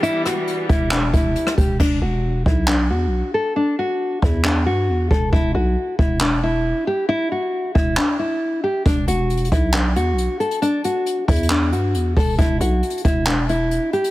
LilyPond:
<<
  \new Staff \with { instrumentName = "Nylon-string guitar" } { \time 4/4 \key e \minor \tempo 4 = 136 e'8 fis'4 e'8 d'8 e'4 g'8 | d'8 fis'4 e'8 d'8 fis'4 a'8 | d'8 fis'4 e'8 d'8 fis'4 a'8 | e'8 fis'4 e'8 d'8 e'4 g'8 |
e'8 fis'4 e'8 d'8 e'4 g'8 | d'8 fis'4 e'8 d'8 fis'4 a'8 | d'8 fis'4 e'8 d'8 fis'4 a'8 | e'8 fis'4 e'8 d'8 e'4 g'8 | }
  \new Staff \with { instrumentName = "String section" } { \clef bass \time 4/4 \key e \minor <e g b>1 | r1 | r1 | r1 |
r1 | r1 | r1 | r1 | }
  \new Staff \with { instrumentName = "808-style bass" } { \clef bass \time 4/4 \key e \minor r4. e,,4 e,,8 r8 e,,8 | e,,8 e,,4 b,,4 e,16. b,,16. r8. | r4. e,4 g,8 e,8 e,,8 | e,,8 b,,8 r8 e,,4.~ e,,16 r8. |
r4. e,,8 r2 | e,,8 e,,4 b,,4 e,16. b,,16. r8. | r4. e,4 g,8 e,8 e,,8 | e,,8 b,,8 r8 e,,4.~ e,,16 r8. | }
  \new DrumStaff \with { instrumentName = "Drums" } \drummode { \time 4/4 hh8 <hh ss>8 hh8 <hh bd>8 <hc hh>8 <hh bd>8 hh16 ss16 <hh bd>8 | <cymc bd>4 r8 bd8 hc4 r4 | r4 r8 bd8 hc4 r8 bd8 | bd4 r8 bd8 hc4 r4 |
r4 r8 bd8 hc4 r4 | <hh bd>8 hh8 \tuplet 3/2 { hh16 hh16 hh16 <hh bd>16 r16 r16 } <hc hh>8 hh8 hh8 hh16 hh16 | hh8 hh8 \tuplet 3/2 { hh16 r16 r16 <hh hho bd>16 hh16 hh16 } hc8 hh8 hh8 <hho bd>8 | <hh bd>8 hh8 \tuplet 3/2 { hh16 hh16 hh16 <hh bd>16 r16 r16 } <hc hh>8 hh8 hh8 hh16 hh16 | }
>>